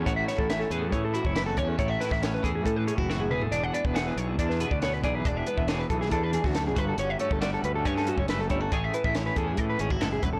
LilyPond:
<<
  \new Staff \with { instrumentName = "Clean electric guitar" } { \time 4/4 \key a \major \tempo 4 = 138 cis''16 e''16 cis''16 a'16 e''16 a'16 b'16 a'16 cis''16 a'16 fis'16 cis''16 b'16 a'16 cis''16 a'16 | cis''16 e''16 b'16 e''16 cis''16 b'16 a'16 gis'16 a'16 b'16 gis'16 fis'16 a'16 gis'16 b'16 a'16 | d''16 fis''16 d''16 b'16 fis''16 b'16 cis''16 b'16 d''16 b'16 gis'16 d''16 cis''16 b'16 d''16 b'16 | d''16 e''16 b'16 e''16 cis''16 b'16 a'16 gis'16 a'16 b'16 gis'16 fis'16 a'16 gis'16 b'16 a'16 |
cis''16 e''16 cis''16 a'16 d''16 a'16 b'16 a'16 cis''16 a'16 fis'16 cis''16 b'16 a'16 cis''16 a'16 | cis''16 e''16 b'16 e''16 cis''16 b'16 a'16 gis'16 a'16 b'16 gis'16 fis'16 a'16 gis'16 b'16 a'16 | }
  \new Staff \with { instrumentName = "Clean electric guitar" } { \time 4/4 \key a \major << { fis'8 e'8 cis'8 gis'4 e'8 e'16 fis'16 cis'8 | e'16 fis'16 e'8 cis'8 gis'4 cis'16 e'16 fis'8 gis'8 | d'8 b8 gis'4 d'8 b'8 b8 gis'8 | d'8 b8 gis'4 d'4. fis'8 |
cis'8 a8 fis'4 cis'8 a'8 a8 e'16 fis'16 | gis'8 e'8 cis'8 gis'4 cis'16 e'4~ e'16 | } \\ { <a, e>4. e4. e,4 | a,4. e4. e,8 e,8~ | e,4 e4. b,4 e,8~ | e,4 e4. e,8 fis,8 g,8~ |
g,4 g4. g,4 g,8 | a,4. e4. gis,8 fis,8 | } >> }
  \new Staff \with { instrumentName = "Fingered electric bass" } { \clef bass \time 4/4 \key a \major a,,8 r16 a,,8. e,8 a,8. fis,,8. e,8 | a,,8 r16 a,,8. e,8 a,8. fis,,8. e,,8 | e,,8 r16 e,,8. b,,8 e,8. d,8. b,,8 | e,,8 r16 e,,8. b,,8 e,8. d,8. g,,8 |
g,,8 r16 g,,8. d,8 g,8. fis,,8. g,,8 | a,,8 r16 a,,8. e,8 a,8 gis,,8 fis,,8 e,,8 | }
  \new DrumStaff \with { instrumentName = "Drums" } \drummode { \time 4/4 <hh bd>8 <hh sn>16 bd16 <hh sn>8 hh8 <hh bd>8 hh16 bd16 <hh sn>8 <hh bd>8 | <hh bd>8 <hh sn>16 <bd sn>16 <hh sn>8 <hh bd>8 <hh bd>8 hh16 bd16 sn16 tommh16 toml16 tomfh16 | hh8 hh16 bd16 <hh sn>8 hh8 <hh bd>16 sn16 hh16 bd16 <hh sn>8 <hh bd>8 | <hh bd>8 hh16 bd16 <hh sn>8 <hh bd>16 sn16 <hh bd>8 hh16 <bd sn>16 <hh sn>8 <hh bd>8 |
hh8 hh16 bd16 <hh sn>8 hh8 <hh bd>16 sn16 hh16 bd16 <hh sn>8 <hh bd>8 | <hh bd>8 hh16 bd16 <hh sn>8 <hh bd>8 <hh bd>8 hh16 bd16 <hh sn>8 <hh bd>8 | }
>>